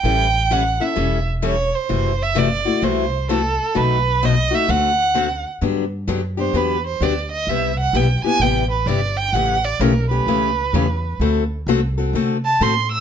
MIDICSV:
0, 0, Header, 1, 5, 480
1, 0, Start_track
1, 0, Tempo, 465477
1, 45, Time_signature, 4, 2, 24, 8
1, 13409, End_track
2, 0, Start_track
2, 0, Title_t, "Violin"
2, 0, Program_c, 0, 40
2, 0, Note_on_c, 0, 79, 97
2, 538, Note_on_c, 0, 78, 82
2, 553, Note_off_c, 0, 79, 0
2, 840, Note_on_c, 0, 76, 71
2, 855, Note_off_c, 0, 78, 0
2, 1313, Note_off_c, 0, 76, 0
2, 1506, Note_on_c, 0, 73, 84
2, 1801, Note_on_c, 0, 72, 82
2, 1816, Note_off_c, 0, 73, 0
2, 2296, Note_on_c, 0, 76, 85
2, 2312, Note_off_c, 0, 72, 0
2, 2454, Note_on_c, 0, 74, 83
2, 2469, Note_off_c, 0, 76, 0
2, 2923, Note_on_c, 0, 72, 89
2, 2939, Note_off_c, 0, 74, 0
2, 3400, Note_off_c, 0, 72, 0
2, 3412, Note_on_c, 0, 69, 87
2, 3886, Note_on_c, 0, 71, 87
2, 3901, Note_off_c, 0, 69, 0
2, 4381, Note_on_c, 0, 75, 89
2, 4396, Note_off_c, 0, 71, 0
2, 4688, Note_on_c, 0, 76, 88
2, 4703, Note_off_c, 0, 75, 0
2, 4847, Note_on_c, 0, 78, 94
2, 4862, Note_off_c, 0, 76, 0
2, 5627, Note_off_c, 0, 78, 0
2, 6594, Note_on_c, 0, 72, 77
2, 6775, Note_on_c, 0, 71, 74
2, 6791, Note_off_c, 0, 72, 0
2, 7071, Note_off_c, 0, 71, 0
2, 7080, Note_on_c, 0, 72, 79
2, 7241, Note_on_c, 0, 74, 70
2, 7256, Note_off_c, 0, 72, 0
2, 7538, Note_off_c, 0, 74, 0
2, 7544, Note_on_c, 0, 75, 80
2, 7721, Note_on_c, 0, 76, 76
2, 7737, Note_off_c, 0, 75, 0
2, 8024, Note_off_c, 0, 76, 0
2, 8037, Note_on_c, 0, 78, 83
2, 8211, Note_on_c, 0, 79, 79
2, 8226, Note_off_c, 0, 78, 0
2, 8494, Note_off_c, 0, 79, 0
2, 8501, Note_on_c, 0, 80, 99
2, 8676, Note_on_c, 0, 79, 84
2, 8691, Note_off_c, 0, 80, 0
2, 8975, Note_off_c, 0, 79, 0
2, 8981, Note_on_c, 0, 71, 64
2, 9147, Note_on_c, 0, 74, 80
2, 9163, Note_off_c, 0, 71, 0
2, 9455, Note_on_c, 0, 79, 93
2, 9471, Note_off_c, 0, 74, 0
2, 9621, Note_on_c, 0, 78, 90
2, 9636, Note_off_c, 0, 79, 0
2, 9946, Note_on_c, 0, 74, 85
2, 9962, Note_off_c, 0, 78, 0
2, 10113, Note_on_c, 0, 70, 73
2, 10129, Note_off_c, 0, 74, 0
2, 10412, Note_off_c, 0, 70, 0
2, 10418, Note_on_c, 0, 71, 79
2, 11514, Note_off_c, 0, 71, 0
2, 12840, Note_on_c, 0, 81, 89
2, 13018, Note_on_c, 0, 84, 86
2, 13033, Note_off_c, 0, 81, 0
2, 13313, Note_off_c, 0, 84, 0
2, 13319, Note_on_c, 0, 88, 105
2, 13409, Note_off_c, 0, 88, 0
2, 13409, End_track
3, 0, Start_track
3, 0, Title_t, "Steel-string acoustic guitar"
3, 0, Program_c, 1, 25
3, 46, Note_on_c, 1, 55, 67
3, 48, Note_on_c, 1, 52, 57
3, 49, Note_on_c, 1, 69, 65
3, 51, Note_on_c, 1, 61, 62
3, 52, Note_on_c, 1, 64, 70
3, 269, Note_off_c, 1, 55, 0
3, 270, Note_off_c, 1, 52, 0
3, 270, Note_off_c, 1, 69, 0
3, 271, Note_off_c, 1, 61, 0
3, 272, Note_off_c, 1, 64, 0
3, 521, Note_on_c, 1, 52, 75
3, 524, Note_on_c, 1, 64, 85
3, 525, Note_on_c, 1, 55, 76
3, 531, Note_on_c, 1, 61, 84
3, 534, Note_on_c, 1, 69, 98
3, 641, Note_off_c, 1, 52, 0
3, 642, Note_off_c, 1, 64, 0
3, 643, Note_off_c, 1, 55, 0
3, 646, Note_off_c, 1, 61, 0
3, 647, Note_off_c, 1, 69, 0
3, 827, Note_on_c, 1, 69, 56
3, 835, Note_on_c, 1, 64, 48
3, 841, Note_on_c, 1, 61, 43
3, 982, Note_off_c, 1, 61, 0
3, 983, Note_off_c, 1, 69, 0
3, 984, Note_off_c, 1, 64, 0
3, 985, Note_on_c, 1, 52, 65
3, 987, Note_on_c, 1, 55, 71
3, 995, Note_on_c, 1, 61, 65
3, 995, Note_on_c, 1, 69, 74
3, 997, Note_on_c, 1, 64, 61
3, 1217, Note_off_c, 1, 52, 0
3, 1218, Note_off_c, 1, 55, 0
3, 1222, Note_off_c, 1, 61, 0
3, 1222, Note_off_c, 1, 69, 0
3, 1223, Note_off_c, 1, 64, 0
3, 1467, Note_on_c, 1, 52, 73
3, 1470, Note_on_c, 1, 55, 81
3, 1470, Note_on_c, 1, 61, 76
3, 1476, Note_on_c, 1, 64, 81
3, 1477, Note_on_c, 1, 69, 85
3, 1592, Note_off_c, 1, 52, 0
3, 1594, Note_off_c, 1, 55, 0
3, 1594, Note_off_c, 1, 61, 0
3, 1597, Note_off_c, 1, 64, 0
3, 1598, Note_off_c, 1, 69, 0
3, 1949, Note_on_c, 1, 52, 58
3, 1950, Note_on_c, 1, 48, 63
3, 1951, Note_on_c, 1, 64, 59
3, 1951, Note_on_c, 1, 66, 65
3, 1958, Note_on_c, 1, 57, 65
3, 2178, Note_off_c, 1, 52, 0
3, 2179, Note_off_c, 1, 48, 0
3, 2179, Note_off_c, 1, 64, 0
3, 2179, Note_off_c, 1, 66, 0
3, 2182, Note_off_c, 1, 57, 0
3, 2423, Note_on_c, 1, 48, 81
3, 2426, Note_on_c, 1, 52, 81
3, 2429, Note_on_c, 1, 57, 93
3, 2432, Note_on_c, 1, 64, 80
3, 2434, Note_on_c, 1, 66, 90
3, 2550, Note_off_c, 1, 48, 0
3, 2551, Note_off_c, 1, 52, 0
3, 2553, Note_off_c, 1, 57, 0
3, 2554, Note_off_c, 1, 64, 0
3, 2555, Note_off_c, 1, 66, 0
3, 2735, Note_on_c, 1, 66, 57
3, 2748, Note_on_c, 1, 64, 54
3, 2756, Note_on_c, 1, 57, 47
3, 2901, Note_off_c, 1, 57, 0
3, 2907, Note_off_c, 1, 64, 0
3, 2907, Note_off_c, 1, 66, 0
3, 2908, Note_on_c, 1, 52, 71
3, 2911, Note_on_c, 1, 48, 61
3, 2913, Note_on_c, 1, 57, 66
3, 2920, Note_on_c, 1, 64, 68
3, 2925, Note_on_c, 1, 66, 76
3, 3137, Note_off_c, 1, 52, 0
3, 3138, Note_off_c, 1, 48, 0
3, 3139, Note_off_c, 1, 57, 0
3, 3143, Note_off_c, 1, 64, 0
3, 3145, Note_off_c, 1, 66, 0
3, 3395, Note_on_c, 1, 52, 77
3, 3397, Note_on_c, 1, 48, 75
3, 3400, Note_on_c, 1, 57, 82
3, 3402, Note_on_c, 1, 64, 81
3, 3402, Note_on_c, 1, 66, 83
3, 3515, Note_off_c, 1, 52, 0
3, 3516, Note_off_c, 1, 48, 0
3, 3517, Note_off_c, 1, 57, 0
3, 3518, Note_off_c, 1, 64, 0
3, 3518, Note_off_c, 1, 66, 0
3, 3861, Note_on_c, 1, 47, 57
3, 3863, Note_on_c, 1, 54, 61
3, 3865, Note_on_c, 1, 63, 62
3, 3866, Note_on_c, 1, 66, 70
3, 3869, Note_on_c, 1, 57, 60
3, 4093, Note_off_c, 1, 47, 0
3, 4094, Note_off_c, 1, 54, 0
3, 4095, Note_off_c, 1, 63, 0
3, 4095, Note_off_c, 1, 66, 0
3, 4097, Note_off_c, 1, 57, 0
3, 4358, Note_on_c, 1, 54, 85
3, 4359, Note_on_c, 1, 47, 75
3, 4360, Note_on_c, 1, 63, 90
3, 4363, Note_on_c, 1, 57, 81
3, 4367, Note_on_c, 1, 66, 91
3, 4476, Note_off_c, 1, 47, 0
3, 4476, Note_off_c, 1, 54, 0
3, 4476, Note_off_c, 1, 63, 0
3, 4478, Note_off_c, 1, 57, 0
3, 4480, Note_off_c, 1, 66, 0
3, 4648, Note_on_c, 1, 66, 57
3, 4660, Note_on_c, 1, 63, 47
3, 4666, Note_on_c, 1, 57, 42
3, 4817, Note_off_c, 1, 57, 0
3, 4822, Note_off_c, 1, 66, 0
3, 4828, Note_off_c, 1, 63, 0
3, 4828, Note_on_c, 1, 50, 60
3, 4830, Note_on_c, 1, 57, 64
3, 4833, Note_on_c, 1, 60, 72
3, 4834, Note_on_c, 1, 69, 66
3, 4838, Note_on_c, 1, 66, 61
3, 5055, Note_off_c, 1, 50, 0
3, 5056, Note_off_c, 1, 57, 0
3, 5058, Note_off_c, 1, 60, 0
3, 5058, Note_off_c, 1, 69, 0
3, 5060, Note_off_c, 1, 66, 0
3, 5304, Note_on_c, 1, 50, 72
3, 5310, Note_on_c, 1, 57, 79
3, 5312, Note_on_c, 1, 66, 82
3, 5315, Note_on_c, 1, 60, 78
3, 5317, Note_on_c, 1, 69, 76
3, 5428, Note_off_c, 1, 50, 0
3, 5431, Note_off_c, 1, 57, 0
3, 5432, Note_off_c, 1, 66, 0
3, 5433, Note_off_c, 1, 60, 0
3, 5434, Note_off_c, 1, 69, 0
3, 5788, Note_on_c, 1, 50, 54
3, 5792, Note_on_c, 1, 59, 66
3, 5793, Note_on_c, 1, 54, 61
3, 5796, Note_on_c, 1, 62, 61
3, 5806, Note_on_c, 1, 67, 67
3, 6015, Note_off_c, 1, 50, 0
3, 6017, Note_off_c, 1, 59, 0
3, 6018, Note_off_c, 1, 54, 0
3, 6019, Note_off_c, 1, 62, 0
3, 6024, Note_off_c, 1, 67, 0
3, 6265, Note_on_c, 1, 50, 71
3, 6269, Note_on_c, 1, 54, 76
3, 6274, Note_on_c, 1, 59, 76
3, 6277, Note_on_c, 1, 62, 88
3, 6281, Note_on_c, 1, 67, 88
3, 6388, Note_off_c, 1, 50, 0
3, 6390, Note_off_c, 1, 54, 0
3, 6393, Note_off_c, 1, 59, 0
3, 6394, Note_off_c, 1, 62, 0
3, 6396, Note_off_c, 1, 67, 0
3, 6572, Note_on_c, 1, 67, 53
3, 6582, Note_on_c, 1, 62, 47
3, 6587, Note_on_c, 1, 59, 43
3, 6738, Note_off_c, 1, 59, 0
3, 6738, Note_off_c, 1, 62, 0
3, 6740, Note_off_c, 1, 67, 0
3, 6746, Note_on_c, 1, 50, 57
3, 6748, Note_on_c, 1, 54, 57
3, 6750, Note_on_c, 1, 59, 65
3, 6751, Note_on_c, 1, 62, 62
3, 6753, Note_on_c, 1, 67, 73
3, 6974, Note_off_c, 1, 50, 0
3, 6975, Note_off_c, 1, 54, 0
3, 6976, Note_off_c, 1, 59, 0
3, 6976, Note_off_c, 1, 62, 0
3, 6977, Note_off_c, 1, 67, 0
3, 7234, Note_on_c, 1, 50, 72
3, 7237, Note_on_c, 1, 54, 72
3, 7241, Note_on_c, 1, 62, 79
3, 7244, Note_on_c, 1, 59, 83
3, 7245, Note_on_c, 1, 67, 80
3, 7353, Note_off_c, 1, 50, 0
3, 7354, Note_off_c, 1, 54, 0
3, 7356, Note_off_c, 1, 62, 0
3, 7357, Note_off_c, 1, 59, 0
3, 7358, Note_off_c, 1, 67, 0
3, 7728, Note_on_c, 1, 48, 66
3, 7730, Note_on_c, 1, 59, 63
3, 7731, Note_on_c, 1, 55, 63
3, 7733, Note_on_c, 1, 64, 62
3, 7736, Note_on_c, 1, 67, 60
3, 7945, Note_off_c, 1, 48, 0
3, 7946, Note_off_c, 1, 55, 0
3, 7946, Note_off_c, 1, 59, 0
3, 7947, Note_off_c, 1, 64, 0
3, 7949, Note_off_c, 1, 67, 0
3, 8192, Note_on_c, 1, 48, 74
3, 8192, Note_on_c, 1, 55, 78
3, 8197, Note_on_c, 1, 59, 80
3, 8200, Note_on_c, 1, 67, 88
3, 8202, Note_on_c, 1, 64, 75
3, 8312, Note_off_c, 1, 48, 0
3, 8312, Note_off_c, 1, 55, 0
3, 8314, Note_off_c, 1, 59, 0
3, 8315, Note_off_c, 1, 67, 0
3, 8317, Note_off_c, 1, 64, 0
3, 8501, Note_on_c, 1, 67, 52
3, 8512, Note_on_c, 1, 64, 50
3, 8520, Note_on_c, 1, 59, 45
3, 8668, Note_off_c, 1, 67, 0
3, 8670, Note_off_c, 1, 59, 0
3, 8673, Note_off_c, 1, 64, 0
3, 8673, Note_on_c, 1, 48, 62
3, 8679, Note_on_c, 1, 55, 67
3, 8682, Note_on_c, 1, 59, 67
3, 8686, Note_on_c, 1, 67, 70
3, 8687, Note_on_c, 1, 64, 67
3, 8898, Note_off_c, 1, 48, 0
3, 8900, Note_off_c, 1, 55, 0
3, 8902, Note_off_c, 1, 59, 0
3, 8904, Note_off_c, 1, 64, 0
3, 8904, Note_off_c, 1, 67, 0
3, 9151, Note_on_c, 1, 48, 83
3, 9154, Note_on_c, 1, 55, 76
3, 9163, Note_on_c, 1, 59, 72
3, 9163, Note_on_c, 1, 64, 79
3, 9166, Note_on_c, 1, 67, 89
3, 9272, Note_off_c, 1, 48, 0
3, 9273, Note_off_c, 1, 55, 0
3, 9277, Note_off_c, 1, 59, 0
3, 9277, Note_off_c, 1, 64, 0
3, 9279, Note_off_c, 1, 67, 0
3, 9636, Note_on_c, 1, 49, 58
3, 9638, Note_on_c, 1, 61, 68
3, 9641, Note_on_c, 1, 52, 60
3, 9642, Note_on_c, 1, 57, 62
3, 9644, Note_on_c, 1, 67, 70
3, 9859, Note_off_c, 1, 49, 0
3, 9860, Note_off_c, 1, 61, 0
3, 9862, Note_off_c, 1, 52, 0
3, 9862, Note_off_c, 1, 57, 0
3, 9863, Note_off_c, 1, 67, 0
3, 10112, Note_on_c, 1, 49, 78
3, 10112, Note_on_c, 1, 61, 96
3, 10113, Note_on_c, 1, 52, 83
3, 10117, Note_on_c, 1, 57, 81
3, 10118, Note_on_c, 1, 67, 92
3, 10232, Note_off_c, 1, 49, 0
3, 10232, Note_off_c, 1, 61, 0
3, 10233, Note_off_c, 1, 52, 0
3, 10234, Note_off_c, 1, 57, 0
3, 10235, Note_off_c, 1, 67, 0
3, 10426, Note_on_c, 1, 67, 57
3, 10429, Note_on_c, 1, 61, 52
3, 10442, Note_on_c, 1, 57, 43
3, 10591, Note_off_c, 1, 67, 0
3, 10592, Note_off_c, 1, 57, 0
3, 10592, Note_off_c, 1, 61, 0
3, 10599, Note_on_c, 1, 49, 70
3, 10600, Note_on_c, 1, 52, 65
3, 10604, Note_on_c, 1, 57, 63
3, 10606, Note_on_c, 1, 61, 62
3, 10606, Note_on_c, 1, 67, 73
3, 10821, Note_off_c, 1, 49, 0
3, 10822, Note_off_c, 1, 52, 0
3, 10824, Note_off_c, 1, 57, 0
3, 10825, Note_off_c, 1, 61, 0
3, 10825, Note_off_c, 1, 67, 0
3, 11074, Note_on_c, 1, 52, 76
3, 11076, Note_on_c, 1, 57, 79
3, 11077, Note_on_c, 1, 49, 80
3, 11081, Note_on_c, 1, 61, 93
3, 11087, Note_on_c, 1, 67, 81
3, 11194, Note_off_c, 1, 52, 0
3, 11195, Note_off_c, 1, 49, 0
3, 11195, Note_off_c, 1, 57, 0
3, 11197, Note_off_c, 1, 61, 0
3, 11200, Note_off_c, 1, 67, 0
3, 11561, Note_on_c, 1, 57, 67
3, 11561, Note_on_c, 1, 60, 65
3, 11562, Note_on_c, 1, 50, 62
3, 11566, Note_on_c, 1, 69, 65
3, 11567, Note_on_c, 1, 66, 66
3, 11783, Note_off_c, 1, 50, 0
3, 11783, Note_off_c, 1, 57, 0
3, 11783, Note_off_c, 1, 60, 0
3, 11786, Note_off_c, 1, 66, 0
3, 11786, Note_off_c, 1, 69, 0
3, 12044, Note_on_c, 1, 50, 73
3, 12045, Note_on_c, 1, 57, 81
3, 12052, Note_on_c, 1, 66, 87
3, 12053, Note_on_c, 1, 60, 88
3, 12058, Note_on_c, 1, 69, 87
3, 12159, Note_off_c, 1, 50, 0
3, 12160, Note_off_c, 1, 57, 0
3, 12163, Note_off_c, 1, 66, 0
3, 12164, Note_off_c, 1, 60, 0
3, 12166, Note_off_c, 1, 69, 0
3, 12351, Note_on_c, 1, 69, 54
3, 12358, Note_on_c, 1, 66, 49
3, 12370, Note_on_c, 1, 60, 47
3, 12515, Note_off_c, 1, 69, 0
3, 12518, Note_off_c, 1, 66, 0
3, 12522, Note_off_c, 1, 60, 0
3, 12528, Note_on_c, 1, 50, 65
3, 12530, Note_on_c, 1, 57, 66
3, 12531, Note_on_c, 1, 66, 66
3, 12534, Note_on_c, 1, 60, 67
3, 12536, Note_on_c, 1, 69, 75
3, 12747, Note_off_c, 1, 50, 0
3, 12748, Note_off_c, 1, 57, 0
3, 12749, Note_off_c, 1, 66, 0
3, 12750, Note_off_c, 1, 60, 0
3, 12751, Note_off_c, 1, 69, 0
3, 13002, Note_on_c, 1, 50, 73
3, 13006, Note_on_c, 1, 57, 79
3, 13006, Note_on_c, 1, 60, 74
3, 13013, Note_on_c, 1, 69, 77
3, 13015, Note_on_c, 1, 66, 80
3, 13119, Note_off_c, 1, 50, 0
3, 13121, Note_off_c, 1, 57, 0
3, 13121, Note_off_c, 1, 60, 0
3, 13125, Note_off_c, 1, 69, 0
3, 13126, Note_off_c, 1, 66, 0
3, 13409, End_track
4, 0, Start_track
4, 0, Title_t, "Upright bass"
4, 0, Program_c, 2, 32
4, 36, Note_on_c, 2, 33, 81
4, 806, Note_off_c, 2, 33, 0
4, 997, Note_on_c, 2, 28, 80
4, 1766, Note_off_c, 2, 28, 0
4, 1959, Note_on_c, 2, 30, 80
4, 2726, Note_off_c, 2, 30, 0
4, 2909, Note_on_c, 2, 36, 83
4, 3680, Note_off_c, 2, 36, 0
4, 3879, Note_on_c, 2, 35, 79
4, 4645, Note_off_c, 2, 35, 0
4, 4832, Note_on_c, 2, 38, 89
4, 5601, Note_off_c, 2, 38, 0
4, 5792, Note_on_c, 2, 43, 72
4, 6259, Note_off_c, 2, 43, 0
4, 6266, Note_on_c, 2, 42, 81
4, 6732, Note_off_c, 2, 42, 0
4, 6739, Note_on_c, 2, 40, 79
4, 7212, Note_off_c, 2, 40, 0
4, 7225, Note_on_c, 2, 38, 83
4, 7695, Note_off_c, 2, 38, 0
4, 7702, Note_on_c, 2, 36, 77
4, 8173, Note_off_c, 2, 36, 0
4, 8181, Note_on_c, 2, 35, 88
4, 8472, Note_off_c, 2, 35, 0
4, 8656, Note_on_c, 2, 33, 83
4, 9131, Note_off_c, 2, 33, 0
4, 9136, Note_on_c, 2, 31, 90
4, 9611, Note_off_c, 2, 31, 0
4, 9617, Note_on_c, 2, 33, 75
4, 10091, Note_off_c, 2, 33, 0
4, 10101, Note_on_c, 2, 35, 83
4, 10574, Note_off_c, 2, 35, 0
4, 10581, Note_on_c, 2, 37, 79
4, 11054, Note_off_c, 2, 37, 0
4, 11065, Note_on_c, 2, 40, 87
4, 11537, Note_off_c, 2, 40, 0
4, 11545, Note_on_c, 2, 38, 80
4, 12017, Note_off_c, 2, 38, 0
4, 12029, Note_on_c, 2, 36, 88
4, 12500, Note_off_c, 2, 36, 0
4, 12511, Note_on_c, 2, 48, 81
4, 12981, Note_off_c, 2, 48, 0
4, 13001, Note_on_c, 2, 45, 85
4, 13409, Note_off_c, 2, 45, 0
4, 13409, End_track
5, 0, Start_track
5, 0, Title_t, "Muted upright bass strokes"
5, 8484, Note_on_c, 9, 29, 35
5, 8588, Note_off_c, 9, 29, 0
5, 13409, End_track
0, 0, End_of_file